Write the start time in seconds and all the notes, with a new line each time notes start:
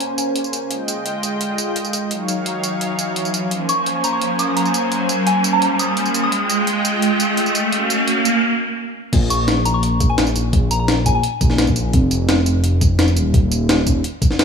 Already playing: A#3 C#4 C5 G#5, riser
0.00 closed hi-hat
0.18 closed hi-hat, tambourine
0.36 closed hi-hat
0.44 tambourine
0.53 closed hi-hat, tambourine
0.71 G#3 F4 D#5 G5, closed hi-hat
0.88 closed hi-hat, tambourine
1.06 closed hi-hat
1.23 closed hi-hat, tambourine
1.41 closed hi-hat
1.58 closed hi-hat, tambourine
1.76 closed hi-hat
1.85 tambourine
1.93 closed hi-hat, tambourine
2.11 F#3 D#4 C#5 F5, closed hi-hat
2.28 closed hi-hat, tambourine
2.46 closed hi-hat
2.64 closed hi-hat, tambourine
2.81 closed hi-hat
2.99 closed hi-hat, tambourine
3.16 closed hi-hat
3.25 tambourine
3.34 closed hi-hat, tambourine
3.51 A#3 C#4 C5 G#5, closed hi-hat
3.69 C#6, closed hi-hat, tambourine
3.86 closed hi-hat
4.04 A#5, closed hi-hat, tambourine
4.13 C#6
4.22 closed hi-hat
4.39 D#6, closed hi-hat, tambourine
4.56 A#5, closed hi-hat
4.65 tambourine
4.74 closed hi-hat, tambourine
4.92 closed hi-hat
5.09 closed hi-hat, tambourine
5.27 G#5, closed hi-hat
5.44 closed hi-hat, tambourine
5.53 A#5
5.62 closed hi-hat
5.79 D#6, closed hi-hat, tambourine
5.88 D#6
5.97 closed hi-hat
6.06 tambourine
6.14 closed hi-hat, tambourine
6.23 D#6
6.32 G#3 F4 D#5 G5, closed hi-hat
6.50 closed hi-hat, tambourine
6.67 closed hi-hat
6.85 closed hi-hat, tambourine
7.02 closed hi-hat
7.20 closed hi-hat, tambourine
7.37 closed hi-hat
7.46 tambourine
7.55 closed hi-hat, tambourine
7.72 C#4 F#4 F5, closed hi-hat
7.90 closed hi-hat, tambourine
8.08 closed hi-hat
8.25 closed hi-hat, tambourine
9.13 A#1, kick, closed hi-hat, crash
9.30 C#6, closed hi-hat, tambourine
9.48 snare, closed hi-hat
9.65 A#1 A#5, closed hi-hat, tambourine
9.74 C#6
9.83 closed hi-hat
10.00 kick, closed hi-hat, tambourine
10.10 G#5
10.18 snare, closed hi-hat
10.27 tambourine
10.36 A#1, closed hi-hat, tambourine
10.53 kick, closed hi-hat
10.71 A#5, closed hi-hat, tambourine
10.79 A#5
10.88 snare, closed hi-hat
11.06 A#1 G#5, kick, closed hi-hat, tambourine
11.15 G#5
11.23 closed hi-hat
11.41 A#1, kick, closed hi-hat, tambourine
11.50 snare
11.58 snare, closed hi-hat
11.67 kick, tambourine
11.76 closed hi-hat, tambourine
11.93 F1, kick, closed hi-hat
12.11 closed hi-hat, tambourine
12.29 snare, closed hi-hat
12.46 F1, closed hi-hat, tambourine
12.64 closed hi-hat
12.81 kick, closed hi-hat, tambourine
12.99 snare, closed hi-hat
13.08 tambourine
13.17 D#1, closed hi-hat, tambourine
13.34 kick, closed hi-hat
13.52 closed hi-hat, tambourine
13.69 snare, closed hi-hat
13.87 D#1, kick, closed hi-hat, tambourine
14.04 closed hi-hat
14.22 kick, closed hi-hat, tambourine
14.31 snare
14.39 snare, closed hi-hat